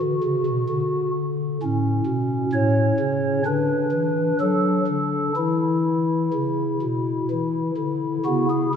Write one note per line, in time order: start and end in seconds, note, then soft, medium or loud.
0.00 0.20 D3 medium
0.00 1.11 F#4 loud
0.24 0.43 C#3 medium
0.46 0.66 B2 medium
0.70 1.58 D3 medium
1.63 2.01 A2 medium
1.63 3.42 C#4 soft
2.06 2.46 B2 medium
2.53 2.92 A2 medium
2.53 3.42 C#5 medium
3.00 3.39 C#3 medium
3.45 3.85 D3 medium
3.45 5.32 D4 soft
3.45 4.37 B4 medium
3.92 4.32 E3 medium
4.40 4.81 F#3 medium
4.40 5.33 A4 medium
4.88 5.29 D3 medium
5.36 6.30 E3 medium
5.36 8.70 E4 medium
6.34 6.74 C#3 medium
6.82 7.23 B2 soft
7.31 7.71 E3 medium
7.78 8.18 D3 soft
8.26 8.66 C#3 medium
8.26 8.46 B3 medium
8.26 8.46 F#4 medium
8.50 8.70 G#4 medium